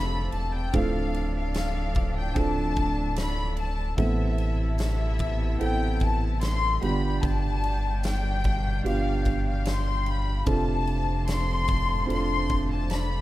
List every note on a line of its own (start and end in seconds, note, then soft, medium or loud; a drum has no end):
0.00 0.29 F1 loud
0.00 0.70 A2 medium
0.00 0.70 F3 medium
0.00 0.66 C4 medium
0.00 0.70 C4 medium
0.00 0.66 D4 medium
0.00 0.66 F4 medium
0.00 3.84 F4 medium
0.00 0.67 G4 medium
0.00 6.77 A4 medium
0.00 3.84 D5 medium
0.00 6.77 A5 medium
0.00 0.34 B5 loud
0.32 0.71 E1 loud
0.32 0.53 A5 medium
0.32 ride medium
0.54 0.74 G5 medium
0.73 2.32 D1 loud
0.73 1.92 A2 medium
0.73 3.94 A2 medium
0.73 3.94 F3 medium
0.73 2.28 C4 medium
0.73 2.28 D4 medium
0.73 3.94 D4 medium
0.73 2.28 F4 medium
0.73 2.28 A4 medium
0.73 1.35 F5 medium
0.73 kick loud
0.73 ride medium
1.14 ride medium
1.36 2.13 F5 medium
1.54 snare loud
1.54 ride medium
1.54 tambourine medium
1.95 kick medium
1.95 ride medium
2.18 2.37 G5 medium
2.35 3.94 D1 loud
2.35 3.90 C4 medium
2.35 3.90 D4 medium
2.35 3.90 F4 medium
2.35 3.90 A4 medium
2.35 3.18 A5 medium
2.35 kick medium
2.35 ride medium
2.76 kick medium
2.76 ride medium
3.16 3.56 B5 medium
3.16 snare loud
3.16 ride medium
3.16 tambourine medium
3.57 3.97 A5 medium
3.57 ride medium
3.97 5.57 A1 loud
3.97 5.16 A2 medium
3.97 6.78 C3 medium
3.97 5.16 E3 medium
3.97 5.52 B3 medium
3.97 6.78 B3 medium
3.97 5.52 C4 medium
3.97 6.78 E4 medium
3.97 5.52 E4 medium
3.97 6.81 E4 medium
3.97 5.53 A4 medium
3.97 4.76 E5 medium
3.97 kick loud
3.97 ride medium
4.38 ride medium
4.78 5.58 E5 medium
4.78 snare loud
4.78 ride medium
4.78 tambourine medium
5.19 kick medium
5.19 ride medium
5.59 6.79 A1 loud
5.59 6.80 B3 medium
5.59 6.82 C4 medium
5.59 6.82 E4 medium
5.59 6.83 A4 medium
5.59 6.02 G5 loud
5.59 ride medium
6.00 6.42 A5 medium
6.00 kick medium
6.00 ride medium
6.41 6.80 C6 loud
6.41 snare loud
6.41 ride medium
6.41 tambourine medium
6.81 7.20 G1 medium
6.81 7.99 G2 medium
6.81 10.44 B2 medium
6.81 8.00 D3 medium
6.81 10.44 G3 medium
6.81 8.36 B3 medium
6.81 8.36 D4 medium
6.81 10.44 D4 medium
6.81 13.21 F4 medium
6.81 8.36 F4 medium
6.81 8.37 G4 medium
6.81 8.42 D5 medium
6.81 10.43 G5 medium
6.81 7.24 B5 medium
6.81 ride medium
7.23 8.81 G1 loud
7.23 8.05 A5 loud
7.23 kick loud
7.23 ride medium
7.64 ride medium
8.03 8.82 G5 medium
8.03 snare loud
8.03 ride medium
8.03 tambourine medium
8.44 10.45 F5 medium
8.44 kick medium
8.44 ride medium
8.84 10.43 G1 loud
8.84 10.38 B3 medium
8.84 10.39 D4 medium
8.84 10.39 F4 medium
8.84 10.39 G4 medium
8.84 9.47 F5 medium
8.84 ride medium
9.25 kick medium
9.25 ride medium
9.49 9.66 F5 medium
9.65 10.08 C6 medium
9.65 snare loud
9.65 ride medium
9.65 tambourine medium
10.06 10.48 B5 medium
10.06 ride medium
10.46 12.05 F1 loud
10.46 13.21 A2 medium
10.46 11.64 C3 medium
10.46 13.21 F3 medium
10.46 12.00 C4 medium
10.46 13.21 C4 medium
10.46 12.01 D4 medium
10.46 12.01 F4 medium
10.46 12.01 A4 medium
10.46 13.21 C5 medium
10.46 13.21 D5 medium
10.46 13.21 A5 medium
10.46 11.25 A5 loud
10.46 kick loud
10.46 ride medium
10.87 ride medium
11.27 12.10 C6 loud
11.27 snare loud
11.27 ride medium
11.27 tambourine medium
11.68 kick loud
11.68 ride medium
12.06 13.21 F1 loud
12.06 13.21 C4 medium
12.06 13.21 D4 medium
12.06 13.21 F4 medium
12.06 12.15 A4 medium
12.06 ride medium
12.12 13.21 C5 medium
12.12 12.67 C6 loud
12.49 kick medium
12.49 ride medium
12.73 12.92 A5 medium
12.90 13.21 B5 medium
12.90 snare loud
12.90 ride medium
12.90 tambourine medium